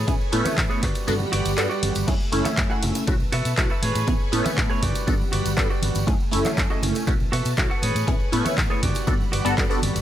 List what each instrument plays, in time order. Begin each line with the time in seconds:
Already playing: clean electric guitar G#4 A4 B4 C#5, string machine B4 G#5 C#6
0.07 fingered electric bass A1, analog polysynth B3 C#4 E4 G#4, kick, closed hi-hat, ride, tambourine
0.21 tambourine
0.32 fingered electric bass A2, analog polysynth A3 B3 C#4 E4, open hi-hat, ride
0.45 muted clean electric guitar stroke, muted fingered electric bass stroke, closed hi-hat, tambourine, high conga
0.57 fingered electric bass A1, muted clean electric guitar stroke, kick, clap, closed hi-hat, ride, tambourine
0.70 clean electric guitar G#4 A4 B4 C#5, tambourine
0.82 fingered electric bass G1, string machine G3 F#5 B5, clean electric guitar F#4 G4 B4 D5, kick, clap, open hi-hat, ride, low conga
0.95 closed hi-hat, tambourine
1.07 fingered electric bass G2, analog polysynth B3 D4 F#4 A4, closed hi-hat, ride, tambourine, low conga
1.20 tambourine, high conga
1.32 fingered electric bass G1, clean electric guitar F#4 G4 B4 D5, open hi-hat, ride
1.45 fingered electric bass G1, closed hi-hat, tambourine
1.57 fingered electric bass G2, analog polysynth B3 D4 F#4 A4, clap, closed hi-hat, ride, tambourine
1.70 clean electric guitar F#4 G4 B4 D5, tambourine
1.83 fingered electric bass G1, open hi-hat, ride, high conga
1.95 fingered electric bass G1, closed hi-hat, tambourine
2.07 fingered electric bass F#2, analog polysynth A3 C#4 E4 G#4, string machine A3 G#5 E6, kick, closed hi-hat, crash, ride
2.20 tambourine
2.32 fingered electric bass F#1, analog polysynth A3 C#4 E4, open hi-hat, ride
2.45 muted clean electric guitar stroke, clap, closed hi-hat, tambourine, high conga
2.57 fingered electric bass F#2, muted clean electric guitar stroke, kick, clap, closed hi-hat, ride, tambourine
2.70 clean electric guitar F#4 G#4 A4 F#5, tambourine
2.83 fingered electric bass F#1, open hi-hat, ride, low conga
2.95 muted clean electric guitar stroke, closed hi-hat, tambourine
3.07 fingered electric bass B1, analog polysynth A3 C#4 E4 F#4, string machine B4 A5, kick, closed hi-hat, ride, tambourine, low conga
3.20 tambourine, high conga
3.32 fingered electric bass B2, clean electric guitar F#4 A4 B4 E5, open hi-hat, ride
3.45 fingered electric bass B2, closed hi-hat, tambourine
3.57 fingered electric bass B1, analog polysynth A3 C#4 E4 F#4, kick, clap, closed hi-hat, ride, tambourine
3.70 clean electric guitar F#4 A4 B4 E5, tambourine
3.82 fingered electric bass A2, clean electric guitar G#4 A4 B4 C#5, string machine G#5 C#6, open hi-hat, ride, high conga
3.95 fingered electric bass A2, closed hi-hat, tambourine
4.07 fingered electric bass A1, analog polysynth B3 C#4 E4 G#4, kick, closed hi-hat, ride, tambourine
4.20 tambourine
4.32 fingered electric bass A2, analog polysynth A3 B3 C#4 E4, open hi-hat, ride
4.45 muted clean electric guitar stroke, muted fingered electric bass stroke, closed hi-hat, tambourine, high conga
4.57 fingered electric bass A1, muted clean electric guitar stroke, kick, clap, closed hi-hat, ride, tambourine
4.70 clean electric guitar G#4 A4 B4 C#5, tambourine
4.82 fingered electric bass G1, string machine G3 F#5 B5, clean electric guitar F#4 G4 B4 D5, kick, open hi-hat, ride, low conga
4.95 closed hi-hat, tambourine
5.07 fingered electric bass G2, analog polysynth B3 D4 F#4 A4, kick, closed hi-hat, ride, tambourine, low conga
5.21 tambourine, high conga
5.32 fingered electric bass G1, clean electric guitar F#4 G4 B4 D5, open hi-hat, ride
5.46 fingered electric bass G1, closed hi-hat, tambourine
5.57 fingered electric bass G2, analog polysynth B3 D4 F#4 A4, kick, clap, closed hi-hat, ride, tambourine
5.70 clean electric guitar F#4 G4 B4 D5, tambourine
5.82 fingered electric bass G1, open hi-hat, ride, high conga
5.95 fingered electric bass G1, closed hi-hat, tambourine
6.07 fingered electric bass F#2, analog polysynth A3 C#4 E4 G#4, string machine A3 G#5, kick, closed hi-hat, ride
6.20 tambourine
6.31 fingered electric bass F#1, analog polysynth A3 C#4 E4, open hi-hat, ride
6.45 muted clean electric guitar stroke, clap, closed hi-hat, tambourine, high conga
6.58 fingered electric bass F#2, muted clean electric guitar stroke, kick, clap, closed hi-hat, ride, tambourine
6.70 clean electric guitar F#4 G#4 A4 D#5, tambourine
6.83 fingered electric bass F#1, open hi-hat, ride, low conga
6.95 muted clean electric guitar stroke, closed hi-hat, tambourine
7.07 fingered electric bass B1, analog polysynth A3 C#4 E4 F#4, string machine B4 A5, kick, closed hi-hat, ride, tambourine, low conga
7.20 tambourine, high conga
7.32 fingered electric bass B2, clean electric guitar F#4 A4 B4 E5, open hi-hat, ride
7.45 fingered electric bass B2, closed hi-hat, tambourine
7.57 fingered electric bass B1, analog polysynth A3 C#4 E4 F#4, kick, clap, closed hi-hat, ride, tambourine
7.70 clean electric guitar F#4 A4 B4 F#5, tambourine
7.82 fingered electric bass A2, clean electric guitar G#4 A4 B4 C#5, string machine G#5 C#6, open hi-hat, ride, high conga
7.95 fingered electric bass A2, closed hi-hat, tambourine
8.07 fingered electric bass A1, analog polysynth B3 C#4 E4 G#4, kick, closed hi-hat, ride
8.20 tambourine
8.32 fingered electric bass A2, analog polysynth A3 B3 C#4 E4, open hi-hat, ride
8.45 muted clean electric guitar stroke, muted fingered electric bass stroke, closed hi-hat, tambourine, high conga
8.57 fingered electric bass A1, muted clean electric guitar stroke, kick, clap, closed hi-hat, ride
8.70 clean electric guitar G#4 A4 B4 C#5, tambourine
8.82 fingered electric bass G1, string machine G3 F#5 B5, clean electric guitar F#4 G4 B4 D5, kick, open hi-hat, ride, low conga
8.95 closed hi-hat, tambourine
9.07 fingered electric bass G2, analog polysynth B3 D4 F#4 A4, kick, closed hi-hat, ride, tambourine, low conga
9.21 tambourine, high conga
9.32 fingered electric bass G1, clean electric guitar F#4 G4 B4 D5, open hi-hat, ride
9.45 fingered electric bass G1, analog polysynth B3 D4 F#4 A4, closed hi-hat, tambourine
9.57 fingered electric bass G2, analog polysynth B3 D4 F#4 A4, kick, clap, closed hi-hat, ride, tambourine
9.70 analog polysynth B3 D4 F#4 A4, clean electric guitar F#4 G4 B4 D5, tambourine
9.82 fingered electric bass G1, open hi-hat, ride, high conga
9.96 fingered electric bass G1, closed hi-hat, tambourine